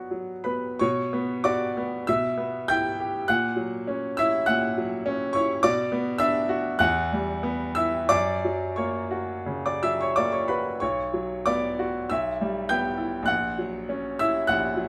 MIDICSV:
0, 0, Header, 1, 2, 480
1, 0, Start_track
1, 0, Key_signature, 2, "minor"
1, 0, Tempo, 683371
1, 558, Time_signature, 4, 2, 24, 8
1, 559, Tempo, 628931
1, 1999, Tempo, 589391
1, 5359, Tempo, 650054
1, 6319, Tempo, 681044
1, 7759, Tempo, 650054
1, 9199, Tempo, 585938
1, 11475, End_track
2, 0, Start_track
2, 0, Title_t, "Grand piano"
2, 0, Program_c, 0, 0
2, 0, Control_c, 0, 64, 127
2, 0, Note_on_c, 0, 47, 45
2, 0, Note_on_c, 0, 54, 39
2, 0, Note_on_c, 0, 59, 36
2, 0, Note_on_c, 0, 66, 38
2, 0, Note_on_c, 0, 74, 57
2, 76, Note_off_c, 0, 74, 0
2, 77, Note_off_c, 0, 54, 0
2, 77, Note_on_c, 0, 54, 35
2, 216, Note_off_c, 0, 66, 0
2, 308, Note_on_c, 0, 83, 57
2, 313, Note_on_c, 0, 71, 44
2, 319, Note_off_c, 0, 59, 0
2, 319, Note_on_c, 0, 59, 33
2, 464, Note_off_c, 0, 54, 0
2, 539, Note_off_c, 0, 71, 0
2, 553, Note_off_c, 0, 83, 0
2, 558, Note_off_c, 0, 59, 0
2, 558, Note_on_c, 0, 85, 87
2, 568, Note_on_c, 0, 73, 67
2, 571, Note_off_c, 0, 47, 0
2, 571, Note_on_c, 0, 47, 69
2, 572, Control_c, 0, 64, 0
2, 698, Control_c, 0, 64, 127
2, 814, Note_on_c, 0, 59, 55
2, 1024, Note_off_c, 0, 73, 0
2, 1049, Note_off_c, 0, 85, 0
2, 1050, Note_on_c, 0, 86, 85
2, 1055, Note_on_c, 0, 66, 53
2, 1056, Note_on_c, 0, 74, 65
2, 1196, Note_off_c, 0, 59, 0
2, 1303, Note_on_c, 0, 59, 51
2, 1435, Note_off_c, 0, 66, 0
2, 1500, Note_off_c, 0, 74, 0
2, 1505, Note_off_c, 0, 47, 0
2, 1528, Note_off_c, 0, 86, 0
2, 1533, Note_on_c, 0, 88, 89
2, 1535, Note_off_c, 0, 59, 0
2, 1540, Control_c, 0, 64, 0
2, 1542, Note_on_c, 0, 76, 68
2, 1544, Note_on_c, 0, 47, 62
2, 1650, Control_c, 0, 64, 127
2, 1764, Note_on_c, 0, 59, 48
2, 1975, Note_off_c, 0, 76, 0
2, 1999, Note_on_c, 0, 91, 104
2, 2001, Note_off_c, 0, 88, 0
2, 2008, Note_on_c, 0, 64, 57
2, 2010, Note_on_c, 0, 79, 82
2, 2144, Note_off_c, 0, 59, 0
2, 2257, Note_on_c, 0, 67, 46
2, 2393, Note_off_c, 0, 64, 0
2, 2458, Note_off_c, 0, 79, 0
2, 2464, Note_off_c, 0, 47, 0
2, 2485, Note_off_c, 0, 91, 0
2, 2486, Note_on_c, 0, 90, 102
2, 2492, Note_off_c, 0, 67, 0
2, 2495, Note_on_c, 0, 78, 70
2, 2496, Control_c, 0, 64, 0
2, 2496, Note_on_c, 0, 46, 71
2, 2625, Control_c, 0, 64, 127
2, 2716, Note_on_c, 0, 54, 49
2, 2969, Note_on_c, 0, 61, 52
2, 3116, Note_off_c, 0, 54, 0
2, 3191, Note_off_c, 0, 78, 0
2, 3211, Note_on_c, 0, 88, 93
2, 3219, Note_off_c, 0, 90, 0
2, 3221, Note_on_c, 0, 64, 58
2, 3225, Note_on_c, 0, 76, 76
2, 3360, Note_off_c, 0, 61, 0
2, 3432, Note_off_c, 0, 46, 0
2, 3443, Note_off_c, 0, 76, 0
2, 3448, Note_on_c, 0, 90, 97
2, 3450, Note_on_c, 0, 78, 79
2, 3452, Note_off_c, 0, 88, 0
2, 3464, Note_on_c, 0, 46, 60
2, 3598, Note_off_c, 0, 64, 0
2, 3704, Note_on_c, 0, 54, 51
2, 3932, Note_on_c, 0, 61, 67
2, 4073, Note_off_c, 0, 54, 0
2, 4124, Note_off_c, 0, 78, 0
2, 4155, Note_on_c, 0, 85, 92
2, 4156, Note_off_c, 0, 90, 0
2, 4171, Note_on_c, 0, 64, 55
2, 4173, Note_on_c, 0, 73, 66
2, 4303, Note_off_c, 0, 61, 0
2, 4370, Note_off_c, 0, 46, 0
2, 4385, Note_off_c, 0, 73, 0
2, 4392, Note_off_c, 0, 85, 0
2, 4398, Note_on_c, 0, 86, 109
2, 4400, Note_off_c, 0, 64, 0
2, 4406, Note_on_c, 0, 47, 70
2, 4406, Note_on_c, 0, 74, 79
2, 4410, Control_c, 0, 64, 0
2, 4521, Control_c, 0, 64, 127
2, 4635, Note_on_c, 0, 59, 58
2, 4837, Note_off_c, 0, 74, 0
2, 4851, Note_on_c, 0, 88, 105
2, 4860, Note_on_c, 0, 62, 62
2, 4861, Note_on_c, 0, 76, 82
2, 4866, Note_off_c, 0, 86, 0
2, 5011, Note_off_c, 0, 59, 0
2, 5100, Note_on_c, 0, 66, 68
2, 5254, Note_off_c, 0, 62, 0
2, 5323, Note_off_c, 0, 76, 0
2, 5335, Note_off_c, 0, 47, 0
2, 5342, Note_on_c, 0, 90, 112
2, 5351, Note_off_c, 0, 88, 0
2, 5351, Note_on_c, 0, 40, 76
2, 5354, Note_on_c, 0, 78, 83
2, 5355, Note_off_c, 0, 66, 0
2, 5372, Control_c, 0, 64, 0
2, 5505, Control_c, 0, 64, 127
2, 5596, Note_on_c, 0, 55, 55
2, 5819, Note_on_c, 0, 59, 66
2, 5974, Note_off_c, 0, 55, 0
2, 6038, Note_off_c, 0, 78, 0
2, 6054, Note_on_c, 0, 88, 94
2, 6062, Note_off_c, 0, 90, 0
2, 6065, Note_on_c, 0, 64, 47
2, 6065, Note_on_c, 0, 76, 65
2, 6213, Note_off_c, 0, 59, 0
2, 6286, Note_off_c, 0, 40, 0
2, 6298, Note_off_c, 0, 76, 0
2, 6304, Note_on_c, 0, 86, 104
2, 6305, Note_on_c, 0, 74, 76
2, 6309, Note_on_c, 0, 42, 69
2, 6310, Note_off_c, 0, 88, 0
2, 6316, Note_off_c, 0, 64, 0
2, 6331, Control_c, 0, 64, 0
2, 6470, Control_c, 0, 64, 127
2, 6557, Note_on_c, 0, 54, 51
2, 6762, Note_off_c, 0, 74, 0
2, 6779, Note_on_c, 0, 85, 65
2, 6788, Note_on_c, 0, 58, 49
2, 6789, Note_on_c, 0, 73, 55
2, 6790, Note_off_c, 0, 86, 0
2, 6938, Note_off_c, 0, 54, 0
2, 7023, Note_on_c, 0, 66, 49
2, 7177, Note_off_c, 0, 58, 0
2, 7247, Note_off_c, 0, 42, 0
2, 7273, Note_on_c, 0, 49, 43
2, 7370, Note_off_c, 0, 73, 0
2, 7393, Note_off_c, 0, 85, 0
2, 7410, Note_on_c, 0, 86, 66
2, 7413, Note_on_c, 0, 74, 49
2, 7420, Note_off_c, 0, 66, 0
2, 7520, Note_off_c, 0, 74, 0
2, 7526, Note_off_c, 0, 86, 0
2, 7530, Note_on_c, 0, 88, 79
2, 7533, Note_on_c, 0, 54, 50
2, 7534, Note_on_c, 0, 76, 61
2, 7639, Note_off_c, 0, 76, 0
2, 7644, Note_off_c, 0, 88, 0
2, 7656, Note_on_c, 0, 85, 69
2, 7660, Note_off_c, 0, 49, 0
2, 7667, Note_on_c, 0, 73, 55
2, 7763, Note_off_c, 0, 73, 0
2, 7764, Note_on_c, 0, 86, 88
2, 7765, Note_off_c, 0, 85, 0
2, 7774, Note_on_c, 0, 74, 57
2, 7776, Note_on_c, 0, 58, 44
2, 7879, Note_off_c, 0, 74, 0
2, 7882, Note_off_c, 0, 86, 0
2, 7882, Note_on_c, 0, 85, 64
2, 7893, Note_on_c, 0, 73, 46
2, 7908, Note_off_c, 0, 54, 0
2, 8000, Note_off_c, 0, 73, 0
2, 8001, Note_on_c, 0, 83, 62
2, 8002, Note_off_c, 0, 85, 0
2, 8009, Note_on_c, 0, 71, 42
2, 8010, Note_on_c, 0, 66, 42
2, 8156, Note_off_c, 0, 58, 0
2, 8229, Note_off_c, 0, 71, 0
2, 8239, Note_on_c, 0, 85, 72
2, 8242, Note_off_c, 0, 83, 0
2, 8247, Note_off_c, 0, 66, 0
2, 8249, Note_on_c, 0, 73, 60
2, 8252, Note_on_c, 0, 35, 57
2, 8258, Control_c, 0, 64, 0
2, 8366, Control_c, 0, 64, 127
2, 8484, Note_on_c, 0, 54, 48
2, 8696, Note_off_c, 0, 73, 0
2, 8721, Note_off_c, 0, 85, 0
2, 8722, Note_on_c, 0, 86, 88
2, 8729, Note_on_c, 0, 59, 46
2, 8730, Note_on_c, 0, 74, 65
2, 8869, Note_off_c, 0, 54, 0
2, 8969, Note_on_c, 0, 66, 54
2, 9109, Note_off_c, 0, 59, 0
2, 9172, Note_off_c, 0, 74, 0
2, 9174, Note_off_c, 0, 35, 0
2, 9194, Note_on_c, 0, 88, 77
2, 9197, Note_off_c, 0, 86, 0
2, 9200, Note_off_c, 0, 66, 0
2, 9203, Note_on_c, 0, 35, 57
2, 9206, Note_on_c, 0, 76, 58
2, 9209, Control_c, 0, 64, 0
2, 9353, Control_c, 0, 64, 127
2, 9453, Note_on_c, 0, 55, 51
2, 9652, Note_off_c, 0, 76, 0
2, 9679, Note_off_c, 0, 88, 0
2, 9682, Note_on_c, 0, 91, 93
2, 9684, Note_on_c, 0, 79, 68
2, 9692, Note_on_c, 0, 59, 54
2, 9831, Note_off_c, 0, 55, 0
2, 9915, Note_on_c, 0, 64, 45
2, 10073, Note_off_c, 0, 59, 0
2, 10120, Note_on_c, 0, 34, 60
2, 10133, Note_off_c, 0, 79, 0
2, 10138, Note_off_c, 0, 35, 0
2, 10145, Note_on_c, 0, 90, 93
2, 10160, Note_on_c, 0, 78, 70
2, 10161, Note_off_c, 0, 64, 0
2, 10165, Note_off_c, 0, 91, 0
2, 10177, Control_c, 0, 64, 0
2, 10309, Control_c, 0, 64, 127
2, 10414, Note_on_c, 0, 54, 44
2, 10664, Note_on_c, 0, 61, 49
2, 10805, Note_off_c, 0, 54, 0
2, 10863, Note_off_c, 0, 78, 0
2, 10888, Note_off_c, 0, 90, 0
2, 10912, Note_on_c, 0, 88, 95
2, 10916, Note_on_c, 0, 76, 66
2, 10918, Note_on_c, 0, 64, 53
2, 11044, Note_off_c, 0, 61, 0
2, 11080, Note_off_c, 0, 34, 0
2, 11125, Note_off_c, 0, 76, 0
2, 11139, Note_off_c, 0, 88, 0
2, 11142, Note_on_c, 0, 90, 98
2, 11150, Note_on_c, 0, 34, 56
2, 11152, Note_on_c, 0, 78, 71
2, 11279, Note_off_c, 0, 64, 0
2, 11383, Note_on_c, 0, 54, 50
2, 11475, Note_off_c, 0, 34, 0
2, 11475, Note_off_c, 0, 54, 0
2, 11475, Note_off_c, 0, 78, 0
2, 11475, Note_off_c, 0, 90, 0
2, 11475, End_track
0, 0, End_of_file